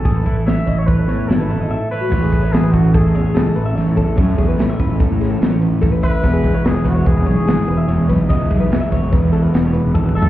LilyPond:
<<
  \new Staff \with { instrumentName = "Clean electric guitar" } { \time 5/4 \key a \major \tempo 4 = 146 gis'16 b'8 a'16 cis''8 dis''16 cis''8 a'16 cis''8 a'16 b'8 dis''16 e''8 cis''16 fis'16 | cis''16 gis'8 cis''16 a'16 b'16 a'16 b'16 a'8 cis''8 gis'8 b'16 e''16 cis''8 a'8 | cis''8 gis'16 b'8 e''16 b'8 a'8 gis'16 a'8 cis''16 b'8 a'16 b'16 e''8 | b'16 gis'8 cis''16 b'16 cis''16 b'16 cis''16 b'8 cis''8 gis'8 b'16 e''16 cis''8 b'8 |
dis''8 gis'16 b'8 e''16 cis''8 b'8 a'16 b'8 cis''16 b'8 a'16 b'16 e''8 | }
  \new Staff \with { instrumentName = "Trumpet" } { \time 5/4 \key a \major a'4 e''8. cis''16 b'4 a'4. b'8~ | b'4 gis'8 fis'8 gis'4 a'4. r8 | r1 r8 b'8~ | b'4 gis'8 fis'8 gis'8 gis'2 r8 |
r1 r8 a'8 | }
  \new Staff \with { instrumentName = "Clean electric guitar" } { \time 5/4 \key a \major << { <a cis'>8 e'8 cis'2 e'8 e'4 e'8 | r1 r4 | r1 r4 | r1 r4 |
r1 r4 | } \\ { a,4. e4 e,4. a,4~ | a,1~ a,4 | r1 r4 | r1 r4 |
r1 r4 | } >> }
  \new Staff \with { instrumentName = "Overdriven electric guitar" } { \time 5/4 \key a \major r1 r4 | <a, e a cis' e'>1~ <a, e a cis' e'>4 | <a, e a cis' e'>1~ <a, e a cis' e'>4 | <e gis b e'>1~ <e gis b e'>4 |
<e gis b e'>1~ <e gis b e'>4 | }
  \new Staff \with { instrumentName = "Fingered electric bass" } { \clef bass \time 5/4 \key a \major a,,8 a,,4 a,,4 a,8 gis,,8 a,,16 gis,,16 r4 | a,,8 r8 a,,4~ a,,16 a,,16 e,16 r16 cis,16 r16 a,,8 a,,16 a,16 e,16 r16 | fis,8 e,8 a,16 r16 a,,16 a,,16 r16 a,8. a,,8. a,,8 r8. | e,,8 r8 e,,4~ e,,16 e,,16 b,,16 r16 gis,,16 r16 e,,8 e,,16 e,16 b,,16 r16 |
cis,8 b,,8 e,16 r16 e,,16 e,,16 r16 e,8. e,,8. e,,16 gis,,8 fis,,8 | }
  \new DrumStaff \with { instrumentName = "Drums" } \drummode { \time 5/4 <hh bd>8 <hh bd>8 <hh sn>8 <hh bd>8 <hh bd>8 hh8 <hh sn>8 hh8 r4 | <cymc bd>8 <bd cymr>8 <cymr sn>8 <bd cymr>8 <bd cymr>8 cymr8 <cymr sn>8 cymr8 <cymr sn>8 <bd cymr>8 | <bd cymr>8 <bd cymr>8 <cymr sn>8 <bd cymr>8 <bd cymr sn>8 <cymr sn>8 <cymr sn>8 cymr8 <bd cymr sn>8 <bd cymr>8 | <bd cymr>8 <bd cymr sn>8 <cymr sn>8 <bd cymr sn>8 <bd cymr>8 cymr8 <cymr sn>8 cymr8 cymr8 <bd cymr sn>8 |
<bd cymr>8 <bd cymr>8 <cymr sn>8 <bd cymr sn>8 <bd cymr sn>8 cymr8 <cymr sn>8 cymr8 \tuplet 3/2 { bd8 bd8 tomfh8 } | }
>>